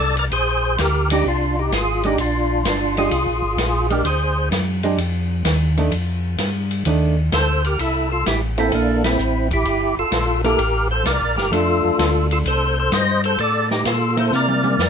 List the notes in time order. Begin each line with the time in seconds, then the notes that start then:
Already playing: C2 A4 D5
0.17 A#4 D5, ride
0.32 A#1 G#4 C5, ride
0.78 D2 G4 A#4, snare, hi-hat pedal, ride
1.10 G#3 D4 D#4 G4, ride
1.25 C2 D4 F4
1.59 D#4 G4
1.71 G#1 F4 G#4, snare, hi-hat pedal, ride
2.03 G#3 D4 D#4 G4, ride
2.18 A#1 D4 F4, ride
2.65 G1 D4 F4, snare, hi-hat pedal, ride
2.97 G#3 D4 F4 G4 G#4, ride
3.11 C2, ride
3.26 A#1
3.42 G#1
3.57 A#1, snare, hi-hat pedal, ride
3.90 G#3 D4 G4 A#4, ride
4.05 D2 G#4 C5, ride
4.51 F#2, snare, hi-hat pedal, ride
4.83 G#3 D4 G4, ride
4.97 F2, ride
5.45 D#2, snare, hi-hat pedal, ride
5.77 D#3 A3 D4, ride
5.91 F2, ride
6.38 G2, snare, hi-hat pedal, ride
6.71 ride
6.85 D#2 D#3 A3 D4, ride
7.32 D2 A4 C5, snare, hi-hat pedal, ride
7.64 G4 A#4, ride
7.79 C2 E4 A4, ride
8.12 F4 A4
8.26 A1 E4 G4, snare, hi-hat pedal, ride
8.58 A#3 C4 E4 A4, ride
8.72 A#1 A#3 D4, ride
9.04 C4 E4, snare, ride
9.19 A1, hi-hat pedal
9.51 E4 G4, kick, ride
9.65 G1, ride
9.97 G1 F4 A4
10.11 A#1, snare, hi-hat pedal, ride
10.44 A#3 E4 G4 A4 A#4, ride
10.58 A1, ride
10.91 A4 C5
11.05 C2 A#4 D5, snare, hi-hat pedal, ride
11.21 A#1
11.36 G1 G4 A#4, snare
11.51 F2 A3 D4 F4 A4, ride
11.84 F2
11.99 D2, snare, hi-hat pedal, ride
12.31 F4 A4, ride
12.45 C2 A4 C5, ride
12.80 A4 C5
12.92 G2 C5 D#5, snare, hi-hat pedal, ride
13.24 A4 C5, ride
13.38 A2 A4 D5, ride
13.71 D#4 G4, snare
13.85 A#2 F4 A4, snare, hi-hat pedal, ride
14.17 A#3 E4 A4 C5, ride
14.32 C3 A#4 D5, snare
14.48 high tom
14.64 high tom
14.79 F2, snare, hi-hat pedal